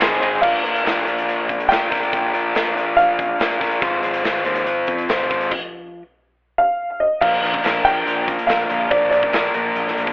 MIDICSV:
0, 0, Header, 1, 7, 480
1, 0, Start_track
1, 0, Tempo, 423729
1, 486, Time_signature, 4, 2, 24, 8
1, 11474, End_track
2, 0, Start_track
2, 0, Title_t, "Upright piano"
2, 0, Program_c, 0, 0
2, 0, Note_on_c, 0, 84, 84
2, 193, Note_off_c, 0, 84, 0
2, 474, Note_on_c, 0, 77, 75
2, 1910, Note_on_c, 0, 79, 92
2, 1964, Note_off_c, 0, 77, 0
2, 2836, Note_off_c, 0, 79, 0
2, 3359, Note_on_c, 0, 77, 97
2, 4042, Note_off_c, 0, 77, 0
2, 7455, Note_on_c, 0, 77, 81
2, 7929, Note_on_c, 0, 75, 72
2, 7952, Note_off_c, 0, 77, 0
2, 8170, Note_on_c, 0, 77, 85
2, 8182, Note_off_c, 0, 75, 0
2, 8890, Note_on_c, 0, 79, 101
2, 8915, Note_off_c, 0, 77, 0
2, 9339, Note_off_c, 0, 79, 0
2, 9594, Note_on_c, 0, 77, 83
2, 10090, Note_on_c, 0, 74, 86
2, 10099, Note_off_c, 0, 77, 0
2, 10297, Note_off_c, 0, 74, 0
2, 10314, Note_on_c, 0, 74, 83
2, 11235, Note_off_c, 0, 74, 0
2, 11474, End_track
3, 0, Start_track
3, 0, Title_t, "Transistor combo organ"
3, 0, Program_c, 1, 18
3, 0, Note_on_c, 1, 68, 70
3, 0, Note_on_c, 1, 72, 61
3, 0, Note_on_c, 1, 75, 59
3, 0, Note_on_c, 1, 84, 74
3, 470, Note_off_c, 1, 72, 0
3, 470, Note_off_c, 1, 84, 0
3, 471, Note_off_c, 1, 68, 0
3, 483, Note_off_c, 1, 75, 0
3, 11474, End_track
4, 0, Start_track
4, 0, Title_t, "Clean electric guitar"
4, 0, Program_c, 2, 27
4, 9137, Note_on_c, 2, 65, 70
4, 9375, Note_on_c, 2, 58, 65
4, 9842, Note_off_c, 2, 65, 0
4, 9847, Note_on_c, 2, 65, 70
4, 10572, Note_off_c, 2, 58, 0
4, 11046, Note_off_c, 2, 65, 0
4, 11051, Note_on_c, 2, 65, 68
4, 11293, Note_on_c, 2, 58, 65
4, 11474, Note_off_c, 2, 58, 0
4, 11474, Note_off_c, 2, 65, 0
4, 11474, End_track
5, 0, Start_track
5, 0, Title_t, "Overdriven electric guitar"
5, 0, Program_c, 3, 29
5, 0, Note_on_c, 3, 44, 95
5, 0, Note_on_c, 3, 51, 103
5, 4, Note_on_c, 3, 56, 103
5, 6, Note_on_c, 3, 63, 109
5, 7, Note_on_c, 3, 60, 93
5, 15, Note_on_c, 3, 68, 105
5, 217, Note_off_c, 3, 44, 0
5, 221, Note_off_c, 3, 51, 0
5, 227, Note_off_c, 3, 56, 0
5, 230, Note_on_c, 3, 44, 75
5, 231, Note_off_c, 3, 60, 0
5, 232, Note_off_c, 3, 63, 0
5, 234, Note_on_c, 3, 51, 85
5, 237, Note_off_c, 3, 68, 0
5, 240, Note_on_c, 3, 56, 89
5, 245, Note_on_c, 3, 60, 85
5, 245, Note_on_c, 3, 63, 84
5, 250, Note_on_c, 3, 68, 98
5, 464, Note_off_c, 3, 44, 0
5, 466, Note_off_c, 3, 51, 0
5, 469, Note_off_c, 3, 56, 0
5, 471, Note_off_c, 3, 60, 0
5, 471, Note_off_c, 3, 63, 0
5, 473, Note_on_c, 3, 46, 69
5, 474, Note_off_c, 3, 68, 0
5, 478, Note_on_c, 3, 53, 77
5, 483, Note_on_c, 3, 58, 76
5, 489, Note_on_c, 3, 62, 82
5, 494, Note_on_c, 3, 65, 77
5, 497, Note_on_c, 3, 70, 93
5, 712, Note_off_c, 3, 70, 0
5, 716, Note_on_c, 3, 70, 57
5, 719, Note_off_c, 3, 65, 0
5, 724, Note_on_c, 3, 65, 59
5, 727, Note_off_c, 3, 62, 0
5, 731, Note_on_c, 3, 62, 50
5, 737, Note_off_c, 3, 58, 0
5, 741, Note_on_c, 3, 58, 47
5, 944, Note_off_c, 3, 46, 0
5, 948, Note_on_c, 3, 46, 75
5, 951, Note_off_c, 3, 53, 0
5, 955, Note_on_c, 3, 53, 74
5, 956, Note_off_c, 3, 58, 0
5, 961, Note_on_c, 3, 58, 78
5, 962, Note_off_c, 3, 62, 0
5, 966, Note_off_c, 3, 65, 0
5, 967, Note_on_c, 3, 62, 81
5, 970, Note_off_c, 3, 70, 0
5, 971, Note_on_c, 3, 65, 84
5, 974, Note_on_c, 3, 70, 79
5, 1186, Note_off_c, 3, 70, 0
5, 1190, Note_on_c, 3, 70, 64
5, 1198, Note_off_c, 3, 65, 0
5, 1202, Note_on_c, 3, 65, 58
5, 1205, Note_off_c, 3, 62, 0
5, 1210, Note_on_c, 3, 62, 57
5, 1212, Note_off_c, 3, 58, 0
5, 1217, Note_on_c, 3, 58, 48
5, 1902, Note_off_c, 3, 58, 0
5, 1912, Note_off_c, 3, 62, 0
5, 1915, Note_on_c, 3, 58, 60
5, 1923, Note_off_c, 3, 70, 0
5, 1926, Note_on_c, 3, 62, 61
5, 1927, Note_off_c, 3, 65, 0
5, 1932, Note_on_c, 3, 65, 76
5, 1936, Note_on_c, 3, 70, 69
5, 2145, Note_off_c, 3, 70, 0
5, 2158, Note_on_c, 3, 70, 65
5, 2166, Note_off_c, 3, 62, 0
5, 2166, Note_off_c, 3, 65, 0
5, 2171, Note_on_c, 3, 65, 60
5, 2173, Note_off_c, 3, 58, 0
5, 2180, Note_on_c, 3, 62, 50
5, 2187, Note_on_c, 3, 58, 48
5, 2399, Note_off_c, 3, 46, 0
5, 2399, Note_off_c, 3, 58, 0
5, 2404, Note_off_c, 3, 62, 0
5, 2404, Note_on_c, 3, 46, 81
5, 2405, Note_off_c, 3, 53, 0
5, 2410, Note_on_c, 3, 53, 70
5, 2412, Note_off_c, 3, 70, 0
5, 2413, Note_on_c, 3, 58, 80
5, 2418, Note_off_c, 3, 65, 0
5, 2418, Note_on_c, 3, 62, 84
5, 2423, Note_on_c, 3, 65, 81
5, 2426, Note_on_c, 3, 70, 86
5, 2629, Note_off_c, 3, 70, 0
5, 2642, Note_on_c, 3, 70, 64
5, 2643, Note_off_c, 3, 62, 0
5, 2646, Note_off_c, 3, 65, 0
5, 2651, Note_off_c, 3, 58, 0
5, 2651, Note_on_c, 3, 65, 55
5, 2656, Note_on_c, 3, 62, 52
5, 2664, Note_on_c, 3, 58, 49
5, 2867, Note_off_c, 3, 46, 0
5, 2881, Note_on_c, 3, 46, 69
5, 2882, Note_off_c, 3, 53, 0
5, 2882, Note_off_c, 3, 58, 0
5, 2885, Note_off_c, 3, 62, 0
5, 2887, Note_on_c, 3, 53, 79
5, 2890, Note_off_c, 3, 70, 0
5, 2896, Note_on_c, 3, 58, 74
5, 2898, Note_off_c, 3, 65, 0
5, 2898, Note_on_c, 3, 62, 85
5, 2903, Note_on_c, 3, 65, 78
5, 2903, Note_on_c, 3, 70, 85
5, 3110, Note_off_c, 3, 70, 0
5, 3124, Note_on_c, 3, 70, 61
5, 3128, Note_off_c, 3, 62, 0
5, 3130, Note_off_c, 3, 65, 0
5, 3133, Note_off_c, 3, 58, 0
5, 3134, Note_on_c, 3, 65, 58
5, 3142, Note_on_c, 3, 62, 59
5, 3146, Note_on_c, 3, 58, 52
5, 3367, Note_off_c, 3, 46, 0
5, 3833, Note_off_c, 3, 58, 0
5, 3844, Note_off_c, 3, 62, 0
5, 3847, Note_on_c, 3, 58, 71
5, 3857, Note_on_c, 3, 62, 68
5, 3858, Note_off_c, 3, 70, 0
5, 3859, Note_off_c, 3, 65, 0
5, 3864, Note_on_c, 3, 65, 82
5, 3872, Note_on_c, 3, 70, 81
5, 4068, Note_off_c, 3, 70, 0
5, 4082, Note_on_c, 3, 70, 65
5, 4084, Note_off_c, 3, 65, 0
5, 4086, Note_off_c, 3, 62, 0
5, 4088, Note_on_c, 3, 65, 60
5, 4091, Note_off_c, 3, 58, 0
5, 4100, Note_on_c, 3, 62, 59
5, 4105, Note_on_c, 3, 58, 51
5, 4314, Note_off_c, 3, 70, 0
5, 4315, Note_off_c, 3, 58, 0
5, 4320, Note_on_c, 3, 56, 78
5, 4323, Note_off_c, 3, 62, 0
5, 4329, Note_on_c, 3, 60, 81
5, 4331, Note_off_c, 3, 65, 0
5, 4336, Note_on_c, 3, 65, 96
5, 4341, Note_on_c, 3, 72, 89
5, 4549, Note_off_c, 3, 72, 0
5, 4562, Note_on_c, 3, 72, 66
5, 4563, Note_off_c, 3, 65, 0
5, 4573, Note_off_c, 3, 60, 0
5, 4576, Note_on_c, 3, 65, 56
5, 4587, Note_on_c, 3, 60, 51
5, 4788, Note_off_c, 3, 56, 0
5, 4798, Note_off_c, 3, 60, 0
5, 4801, Note_on_c, 3, 56, 79
5, 4806, Note_off_c, 3, 65, 0
5, 4812, Note_off_c, 3, 72, 0
5, 4812, Note_on_c, 3, 60, 77
5, 4819, Note_on_c, 3, 65, 96
5, 4826, Note_on_c, 3, 72, 95
5, 5029, Note_off_c, 3, 72, 0
5, 5042, Note_off_c, 3, 65, 0
5, 5043, Note_on_c, 3, 72, 63
5, 5051, Note_off_c, 3, 60, 0
5, 5056, Note_on_c, 3, 65, 62
5, 5064, Note_on_c, 3, 60, 50
5, 5290, Note_off_c, 3, 56, 0
5, 5765, Note_off_c, 3, 60, 0
5, 5767, Note_on_c, 3, 56, 68
5, 5769, Note_off_c, 3, 65, 0
5, 5778, Note_off_c, 3, 72, 0
5, 5779, Note_on_c, 3, 60, 70
5, 5783, Note_on_c, 3, 65, 78
5, 5792, Note_on_c, 3, 72, 76
5, 5996, Note_off_c, 3, 72, 0
5, 6006, Note_off_c, 3, 65, 0
5, 6009, Note_on_c, 3, 72, 64
5, 6018, Note_off_c, 3, 60, 0
5, 6019, Note_on_c, 3, 65, 61
5, 6031, Note_on_c, 3, 60, 55
5, 6239, Note_off_c, 3, 56, 0
5, 6240, Note_off_c, 3, 72, 0
5, 6245, Note_off_c, 3, 65, 0
5, 6251, Note_off_c, 3, 60, 0
5, 6817, Note_off_c, 3, 53, 0
5, 8169, Note_on_c, 3, 46, 83
5, 8176, Note_on_c, 3, 50, 78
5, 8179, Note_on_c, 3, 53, 95
5, 8187, Note_on_c, 3, 58, 76
5, 8190, Note_on_c, 3, 62, 97
5, 8195, Note_on_c, 3, 70, 93
5, 8411, Note_off_c, 3, 70, 0
5, 8416, Note_on_c, 3, 70, 68
5, 8422, Note_off_c, 3, 62, 0
5, 8427, Note_on_c, 3, 62, 60
5, 8428, Note_off_c, 3, 58, 0
5, 8432, Note_on_c, 3, 58, 49
5, 8435, Note_off_c, 3, 53, 0
5, 8439, Note_on_c, 3, 53, 54
5, 8648, Note_off_c, 3, 53, 0
5, 8652, Note_on_c, 3, 53, 69
5, 8657, Note_off_c, 3, 50, 0
5, 8661, Note_off_c, 3, 58, 0
5, 8665, Note_on_c, 3, 58, 64
5, 8670, Note_off_c, 3, 62, 0
5, 8674, Note_on_c, 3, 62, 72
5, 8677, Note_off_c, 3, 70, 0
5, 8682, Note_on_c, 3, 70, 72
5, 8889, Note_off_c, 3, 70, 0
5, 8894, Note_on_c, 3, 70, 61
5, 8898, Note_off_c, 3, 62, 0
5, 8902, Note_on_c, 3, 62, 60
5, 8908, Note_off_c, 3, 58, 0
5, 8913, Note_on_c, 3, 58, 59
5, 8915, Note_off_c, 3, 53, 0
5, 8919, Note_on_c, 3, 53, 54
5, 9599, Note_off_c, 3, 46, 0
5, 9604, Note_off_c, 3, 58, 0
5, 9604, Note_on_c, 3, 46, 85
5, 9609, Note_off_c, 3, 53, 0
5, 9610, Note_on_c, 3, 50, 79
5, 9611, Note_off_c, 3, 62, 0
5, 9613, Note_on_c, 3, 53, 94
5, 9614, Note_off_c, 3, 70, 0
5, 9618, Note_on_c, 3, 58, 90
5, 9625, Note_on_c, 3, 62, 93
5, 9627, Note_on_c, 3, 70, 86
5, 9837, Note_off_c, 3, 70, 0
5, 9847, Note_off_c, 3, 62, 0
5, 9851, Note_on_c, 3, 70, 66
5, 9858, Note_off_c, 3, 58, 0
5, 9860, Note_on_c, 3, 62, 58
5, 9872, Note_on_c, 3, 58, 55
5, 9875, Note_off_c, 3, 53, 0
5, 9880, Note_on_c, 3, 53, 48
5, 10077, Note_off_c, 3, 46, 0
5, 10085, Note_off_c, 3, 50, 0
5, 10091, Note_on_c, 3, 46, 92
5, 10097, Note_off_c, 3, 58, 0
5, 10098, Note_off_c, 3, 53, 0
5, 10099, Note_on_c, 3, 50, 86
5, 10101, Note_off_c, 3, 62, 0
5, 10103, Note_on_c, 3, 53, 88
5, 10104, Note_off_c, 3, 70, 0
5, 10111, Note_on_c, 3, 58, 98
5, 10115, Note_on_c, 3, 62, 89
5, 10117, Note_on_c, 3, 70, 100
5, 10317, Note_off_c, 3, 70, 0
5, 10326, Note_off_c, 3, 62, 0
5, 10330, Note_on_c, 3, 70, 64
5, 10336, Note_off_c, 3, 58, 0
5, 10339, Note_on_c, 3, 62, 65
5, 10350, Note_off_c, 3, 53, 0
5, 10350, Note_on_c, 3, 58, 60
5, 10355, Note_on_c, 3, 53, 55
5, 10565, Note_off_c, 3, 58, 0
5, 10566, Note_off_c, 3, 53, 0
5, 10570, Note_on_c, 3, 53, 68
5, 10571, Note_off_c, 3, 46, 0
5, 10572, Note_off_c, 3, 62, 0
5, 10575, Note_off_c, 3, 50, 0
5, 10579, Note_on_c, 3, 58, 67
5, 10582, Note_off_c, 3, 70, 0
5, 10586, Note_on_c, 3, 62, 72
5, 10596, Note_on_c, 3, 70, 77
5, 10803, Note_off_c, 3, 70, 0
5, 10814, Note_off_c, 3, 62, 0
5, 10817, Note_on_c, 3, 70, 73
5, 10820, Note_off_c, 3, 58, 0
5, 10827, Note_on_c, 3, 62, 65
5, 10834, Note_on_c, 3, 58, 58
5, 10837, Note_off_c, 3, 53, 0
5, 10841, Note_on_c, 3, 53, 58
5, 11474, Note_off_c, 3, 53, 0
5, 11474, Note_off_c, 3, 58, 0
5, 11474, Note_off_c, 3, 62, 0
5, 11474, Note_off_c, 3, 70, 0
5, 11474, End_track
6, 0, Start_track
6, 0, Title_t, "Picked electric bass"
6, 0, Program_c, 4, 34
6, 6, Note_on_c, 4, 32, 95
6, 180, Note_off_c, 4, 32, 0
6, 253, Note_on_c, 4, 32, 81
6, 424, Note_off_c, 4, 32, 0
6, 4334, Note_on_c, 4, 32, 87
6, 4544, Note_off_c, 4, 32, 0
6, 4567, Note_on_c, 4, 32, 83
6, 4780, Note_off_c, 4, 32, 0
6, 4801, Note_on_c, 4, 32, 83
6, 5018, Note_off_c, 4, 32, 0
6, 5045, Note_on_c, 4, 39, 80
6, 5260, Note_off_c, 4, 39, 0
6, 5280, Note_on_c, 4, 32, 77
6, 5497, Note_off_c, 4, 32, 0
6, 5527, Note_on_c, 4, 41, 74
6, 5741, Note_off_c, 4, 41, 0
6, 5772, Note_on_c, 4, 32, 82
6, 5984, Note_off_c, 4, 32, 0
6, 6011, Note_on_c, 4, 32, 72
6, 6224, Note_off_c, 4, 32, 0
6, 8180, Note_on_c, 4, 34, 90
6, 8354, Note_off_c, 4, 34, 0
6, 8427, Note_on_c, 4, 34, 86
6, 8599, Note_off_c, 4, 34, 0
6, 8662, Note_on_c, 4, 34, 88
6, 8835, Note_off_c, 4, 34, 0
6, 8896, Note_on_c, 4, 34, 86
6, 9071, Note_off_c, 4, 34, 0
6, 9139, Note_on_c, 4, 34, 85
6, 9487, Note_off_c, 4, 34, 0
6, 9609, Note_on_c, 4, 34, 82
6, 9786, Note_off_c, 4, 34, 0
6, 9854, Note_on_c, 4, 34, 70
6, 10029, Note_off_c, 4, 34, 0
6, 10101, Note_on_c, 4, 34, 88
6, 10273, Note_off_c, 4, 34, 0
6, 10326, Note_on_c, 4, 34, 86
6, 10503, Note_off_c, 4, 34, 0
6, 10573, Note_on_c, 4, 34, 83
6, 10747, Note_off_c, 4, 34, 0
6, 10819, Note_on_c, 4, 34, 83
6, 10991, Note_off_c, 4, 34, 0
6, 11052, Note_on_c, 4, 34, 78
6, 11226, Note_off_c, 4, 34, 0
6, 11296, Note_on_c, 4, 34, 73
6, 11468, Note_off_c, 4, 34, 0
6, 11474, End_track
7, 0, Start_track
7, 0, Title_t, "Drums"
7, 10, Note_on_c, 9, 51, 103
7, 15, Note_on_c, 9, 39, 102
7, 23, Note_on_c, 9, 38, 117
7, 123, Note_off_c, 9, 51, 0
7, 129, Note_off_c, 9, 39, 0
7, 136, Note_off_c, 9, 38, 0
7, 260, Note_on_c, 9, 51, 76
7, 373, Note_off_c, 9, 51, 0
7, 492, Note_on_c, 9, 36, 104
7, 493, Note_on_c, 9, 49, 84
7, 605, Note_off_c, 9, 36, 0
7, 606, Note_off_c, 9, 49, 0
7, 736, Note_on_c, 9, 42, 56
7, 849, Note_off_c, 9, 42, 0
7, 860, Note_on_c, 9, 42, 62
7, 974, Note_off_c, 9, 42, 0
7, 977, Note_on_c, 9, 42, 60
7, 989, Note_on_c, 9, 38, 93
7, 1090, Note_off_c, 9, 42, 0
7, 1102, Note_off_c, 9, 38, 0
7, 1213, Note_on_c, 9, 42, 56
7, 1327, Note_off_c, 9, 42, 0
7, 1339, Note_on_c, 9, 42, 59
7, 1452, Note_off_c, 9, 42, 0
7, 1457, Note_on_c, 9, 42, 55
7, 1570, Note_off_c, 9, 42, 0
7, 1691, Note_on_c, 9, 36, 74
7, 1694, Note_on_c, 9, 42, 55
7, 1804, Note_off_c, 9, 36, 0
7, 1807, Note_off_c, 9, 42, 0
7, 1814, Note_on_c, 9, 42, 55
7, 1927, Note_off_c, 9, 42, 0
7, 1935, Note_on_c, 9, 42, 57
7, 1947, Note_on_c, 9, 38, 93
7, 2048, Note_off_c, 9, 42, 0
7, 2061, Note_off_c, 9, 38, 0
7, 2174, Note_on_c, 9, 36, 79
7, 2179, Note_on_c, 9, 42, 54
7, 2192, Note_on_c, 9, 38, 30
7, 2287, Note_off_c, 9, 36, 0
7, 2293, Note_off_c, 9, 42, 0
7, 2296, Note_on_c, 9, 42, 48
7, 2305, Note_off_c, 9, 38, 0
7, 2409, Note_off_c, 9, 42, 0
7, 2413, Note_on_c, 9, 36, 96
7, 2414, Note_on_c, 9, 42, 53
7, 2526, Note_off_c, 9, 36, 0
7, 2527, Note_off_c, 9, 42, 0
7, 2650, Note_on_c, 9, 42, 52
7, 2764, Note_off_c, 9, 42, 0
7, 2889, Note_on_c, 9, 42, 51
7, 2901, Note_on_c, 9, 38, 90
7, 3002, Note_off_c, 9, 42, 0
7, 3015, Note_off_c, 9, 38, 0
7, 3140, Note_on_c, 9, 42, 54
7, 3253, Note_off_c, 9, 42, 0
7, 3378, Note_on_c, 9, 42, 53
7, 3491, Note_off_c, 9, 42, 0
7, 3613, Note_on_c, 9, 36, 76
7, 3616, Note_on_c, 9, 42, 55
7, 3726, Note_off_c, 9, 36, 0
7, 3729, Note_off_c, 9, 42, 0
7, 3850, Note_on_c, 9, 42, 57
7, 3863, Note_on_c, 9, 38, 100
7, 3964, Note_off_c, 9, 42, 0
7, 3976, Note_off_c, 9, 38, 0
7, 4092, Note_on_c, 9, 36, 75
7, 4094, Note_on_c, 9, 42, 55
7, 4106, Note_on_c, 9, 38, 29
7, 4205, Note_off_c, 9, 36, 0
7, 4205, Note_off_c, 9, 42, 0
7, 4205, Note_on_c, 9, 42, 51
7, 4220, Note_off_c, 9, 38, 0
7, 4318, Note_off_c, 9, 42, 0
7, 4324, Note_on_c, 9, 42, 59
7, 4329, Note_on_c, 9, 36, 103
7, 4437, Note_off_c, 9, 42, 0
7, 4443, Note_off_c, 9, 36, 0
7, 4563, Note_on_c, 9, 42, 58
7, 4676, Note_off_c, 9, 42, 0
7, 4687, Note_on_c, 9, 42, 64
7, 4800, Note_off_c, 9, 42, 0
7, 4807, Note_on_c, 9, 42, 55
7, 4820, Note_on_c, 9, 38, 97
7, 4921, Note_off_c, 9, 42, 0
7, 4933, Note_off_c, 9, 38, 0
7, 5038, Note_on_c, 9, 42, 57
7, 5151, Note_off_c, 9, 42, 0
7, 5162, Note_on_c, 9, 42, 59
7, 5275, Note_off_c, 9, 42, 0
7, 5285, Note_on_c, 9, 42, 61
7, 5399, Note_off_c, 9, 42, 0
7, 5516, Note_on_c, 9, 42, 56
7, 5527, Note_on_c, 9, 36, 74
7, 5629, Note_off_c, 9, 42, 0
7, 5641, Note_off_c, 9, 36, 0
7, 5643, Note_on_c, 9, 42, 60
7, 5757, Note_off_c, 9, 42, 0
7, 5761, Note_on_c, 9, 42, 57
7, 5773, Note_on_c, 9, 38, 102
7, 5874, Note_off_c, 9, 42, 0
7, 5887, Note_off_c, 9, 38, 0
7, 6007, Note_on_c, 9, 42, 62
7, 6011, Note_on_c, 9, 36, 79
7, 6120, Note_off_c, 9, 42, 0
7, 6124, Note_off_c, 9, 36, 0
7, 6125, Note_on_c, 9, 42, 54
7, 6238, Note_off_c, 9, 42, 0
7, 6243, Note_on_c, 9, 49, 81
7, 6250, Note_on_c, 9, 36, 93
7, 6356, Note_off_c, 9, 49, 0
7, 6363, Note_off_c, 9, 36, 0
7, 8180, Note_on_c, 9, 36, 102
7, 8181, Note_on_c, 9, 49, 89
7, 8293, Note_off_c, 9, 36, 0
7, 8294, Note_off_c, 9, 49, 0
7, 8420, Note_on_c, 9, 42, 57
7, 8534, Note_off_c, 9, 42, 0
7, 8541, Note_on_c, 9, 36, 83
7, 8654, Note_off_c, 9, 36, 0
7, 8663, Note_on_c, 9, 39, 87
7, 8664, Note_on_c, 9, 42, 55
7, 8677, Note_on_c, 9, 38, 91
7, 8776, Note_off_c, 9, 39, 0
7, 8778, Note_off_c, 9, 42, 0
7, 8790, Note_off_c, 9, 38, 0
7, 8904, Note_on_c, 9, 42, 60
7, 9017, Note_off_c, 9, 42, 0
7, 9144, Note_on_c, 9, 42, 58
7, 9257, Note_off_c, 9, 42, 0
7, 9379, Note_on_c, 9, 36, 81
7, 9380, Note_on_c, 9, 42, 61
7, 9492, Note_off_c, 9, 36, 0
7, 9493, Note_off_c, 9, 42, 0
7, 9502, Note_on_c, 9, 42, 60
7, 9615, Note_off_c, 9, 42, 0
7, 9616, Note_on_c, 9, 42, 61
7, 9629, Note_on_c, 9, 38, 102
7, 9633, Note_on_c, 9, 39, 85
7, 9730, Note_off_c, 9, 42, 0
7, 9742, Note_off_c, 9, 38, 0
7, 9746, Note_off_c, 9, 39, 0
7, 9856, Note_on_c, 9, 42, 62
7, 9969, Note_off_c, 9, 42, 0
7, 10092, Note_on_c, 9, 42, 60
7, 10096, Note_on_c, 9, 36, 106
7, 10206, Note_off_c, 9, 42, 0
7, 10210, Note_off_c, 9, 36, 0
7, 10334, Note_on_c, 9, 42, 54
7, 10447, Note_off_c, 9, 42, 0
7, 10455, Note_on_c, 9, 36, 82
7, 10568, Note_off_c, 9, 36, 0
7, 10570, Note_on_c, 9, 42, 52
7, 10579, Note_on_c, 9, 39, 92
7, 10583, Note_on_c, 9, 38, 96
7, 10684, Note_off_c, 9, 42, 0
7, 10693, Note_off_c, 9, 39, 0
7, 10696, Note_off_c, 9, 38, 0
7, 10806, Note_on_c, 9, 42, 53
7, 10920, Note_off_c, 9, 42, 0
7, 11052, Note_on_c, 9, 42, 52
7, 11165, Note_off_c, 9, 42, 0
7, 11189, Note_on_c, 9, 38, 33
7, 11297, Note_on_c, 9, 42, 56
7, 11302, Note_off_c, 9, 38, 0
7, 11406, Note_off_c, 9, 42, 0
7, 11406, Note_on_c, 9, 42, 51
7, 11410, Note_on_c, 9, 36, 73
7, 11474, Note_off_c, 9, 36, 0
7, 11474, Note_off_c, 9, 42, 0
7, 11474, End_track
0, 0, End_of_file